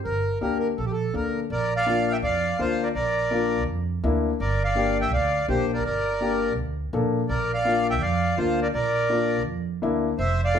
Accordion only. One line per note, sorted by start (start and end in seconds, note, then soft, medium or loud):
0.05 0.39 A#4 medium
0.41 0.58 A#4 medium
0.59 0.68 A#4 medium
0.78 0.85 A4 medium
0.85 0.92 G4 medium
0.92 1.15 A4 medium
1.16 1.40 A#4 medium
1.52 1.74 A#4 medium
1.52 1.73 D5 medium
1.76 2.09 D5 medium
1.76 2.13 F5 loud
2.12 2.17 E5 medium
2.12 2.17 G5 loud
2.24 2.57 D5 medium
2.24 2.61 F5 medium
2.60 2.82 F4 medium
2.60 2.84 C5 loud
2.83 2.89 A#4 medium
2.83 2.88 D5 medium
2.95 3.63 A#4 medium
2.95 3.64 D5 medium
4.41 4.63 A#4 medium
4.41 4.63 D5 medium
4.64 4.98 D5 medium
4.64 4.98 F5 loud
5.01 5.12 E5 medium
5.01 5.12 G5 loud
5.13 5.46 D5 medium
5.13 5.46 F5 medium
5.49 5.72 G4 medium
5.49 5.71 C5 loud
5.73 5.84 A#4 medium
5.73 5.83 D5 medium
5.85 6.54 A#4 medium
5.85 6.53 D5 medium
7.29 7.52 A#4 medium
7.29 7.52 D5 medium
7.54 7.87 D5 medium
7.54 7.87 F5 loud
7.90 8.01 E5 medium
7.90 8.02 G5 loud
8.02 8.35 D5 medium
8.02 8.39 F5 medium
8.38 8.60 F4 medium
8.38 8.60 C5 loud
8.62 8.68 A#4 medium
8.62 8.68 D5 medium
8.74 9.43 A#4 medium
8.74 9.42 D5 medium
10.19 10.41 C5 medium
10.19 10.41 E5 loud
10.44 10.59 D5 medium
10.44 10.59 F5 loud